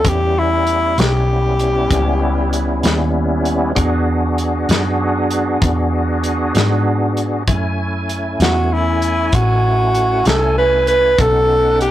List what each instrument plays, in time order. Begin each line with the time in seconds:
0.04 fingered electric bass E2, tonewheel organ G3 B3 C#4 E4, kick, closed hi-hat
0.08 tenor saxophone G4
0.39 tenor saxophone E4
0.67 closed hi-hat
0.98 fingered electric bass B1, tenor saxophone G4, snare, closed hi-hat
1.59 closed hi-hat
1.91 fingered electric bass C#2, kick, closed hi-hat
2.53 closed hi-hat
2.83 fingered electric bass D#2, snare, closed hi-hat
3.45 closed hi-hat
3.75 fingered electric bass E2, tonewheel organ B3 D4 F#4 G#4, kick, closed hi-hat
4.38 closed hi-hat
4.69 fingered electric bass F#2, snare, closed hi-hat
5.31 closed hi-hat
5.62 fingered electric bass E2, kick, closed hi-hat
6.24 closed hi-hat
6.55 fingered electric bass G#2, snare, closed hi-hat
7.17 closed hi-hat
7.47 fingered electric bass F#2, tonewheel organ A3 C#4 E4 G#5, kick, closed hi-hat
8.09 closed hi-hat
8.40 fingered electric bass E2, tenor saxophone F#4, snare, closed hi-hat
8.73 tenor saxophone E4
9.02 closed hi-hat
9.32 fingered electric bass A1, tenor saxophone F#4, kick, closed hi-hat
9.95 closed hi-hat
10.25 fingered electric bass C2, tenor saxophone A4, snare, closed hi-hat
10.58 tenor saxophone B4
10.87 tenor saxophone B4, closed hi-hat
11.18 fingered electric bass B1, tonewheel organ B3 C#4 D#4 F#5, tenor saxophone A4, kick, closed hi-hat
11.81 tenor saxophone G4, closed hi-hat